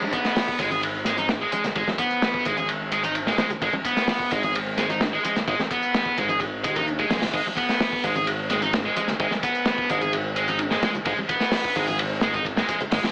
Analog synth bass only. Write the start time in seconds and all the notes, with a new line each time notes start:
0.59 G#1
1.76 G#1
2.46 G#1
3.62 G#1
4.32 G#1
5.48 G#1
6.18 G#1
6.65 D#2
7.11 B1
7.34 G#1
8.04 G#1
9.20 G#1
9.90 G#1
11.06 G#1
11.76 G#1
12.92 G#1